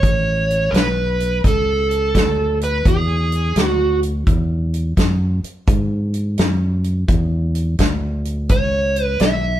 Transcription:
Already playing: C#5
0.03 A1, kick, closed hi-hat
0.50 closed hi-hat
0.71 B1 A#4, closed hi-hat
0.75 B4, snare
1.20 closed hi-hat
1.44 C#2 A4, kick, closed hi-hat
1.91 closed hi-hat
2.15 D2, kick, snare, closed hi-hat
2.61 B4, closed hi-hat
2.85 E2 G#4, kick, closed hi-hat
3.32 closed hi-hat
3.56 D2, snare, closed hi-hat
3.66 F#4
4.03 closed hi-hat
4.27 E2, kick, closed hi-hat
4.74 closed hi-hat
4.97 F#2, kick, snare, closed hi-hat
5.44 muted fingered electric bass stroke, closed hi-hat
5.68 G#2, kick, closed hi-hat
6.14 closed hi-hat
6.38 F#2, snare, closed hi-hat
6.84 closed hi-hat
7.08 E2, kick, closed hi-hat
7.55 closed hi-hat
7.79 D2, kick, snare, closed hi-hat
8.25 closed hi-hat
8.49 C#2 C#5, kick, closed hi-hat
8.96 closed hi-hat
9.04 B4
9.20 B1 E5, snare, closed hi-hat

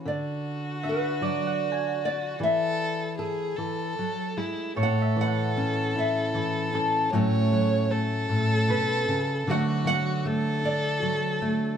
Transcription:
0.04 D3 F#4 D5
0.83 D4 E5
0.89 B4
1.21 F#3 D5
1.47 F#5
1.70 A4 G#5
2.05 D5
2.39 E3 A4 E5
3.18 G#4 A4
3.56 E3 A4
3.99 F#3
4.37 G#3 E4
4.76 A2 A4 C#5
4.83 F#5
5.02 E5
5.16 E3
5.21 F#5
5.27 F#5
5.57 C#4
5.95 E4 E5
6.34 E3
6.73 C#4 A4
7.10 A2 F#3 A3 C#5
7.14 C#4 A4 C#5
7.52 F#3
7.91 A3 A4
8.29 A2
8.68 B2 B4
9.08 C#3
9.47 D3 F#3 A3 D4 F#4 F#5
9.85 F#3 F#5
10.25 A3 A4
10.64 D4 D5
11.02 F#3
11.42 A3

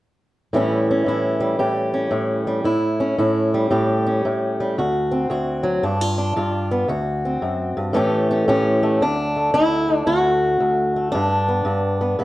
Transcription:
0.53 A2 E3 G3 C#4 E4
0.91 C#4
1.06 A2 E4
1.40 G3
1.59 A2 G4
1.94 C#4
2.11 A2
2.47 G3
2.64 A2 E4
3.00 C#4
3.18 A2 E4
3.54 G3
3.71 A2 G4
4.06 C#4
4.25 A2
4.60 G3
4.78 D2 F#4
5.11 C4
5.30 D2 F#4
5.63 F#3
5.83 G2 D4
6.01 F4
6.18 D4
6.36 G2 F4
6.71 B3
6.88 D2 F#4
7.25 C4
7.42 F#2
7.77 G2
7.93 A2 E3 A3 C#4 G4
8.31 C#4
8.48 A2 C#4 G4
8.83 A3
9.01 D2 D4
9.36 A3
9.54 D2 E4
9.89 A3
9.96 D4
10.06 D2 F#4
10.60 D2
10.96 A3
11.12 G2 D4
11.48 B3
11.65 G2
12.01 B3
12.19 G2 B3

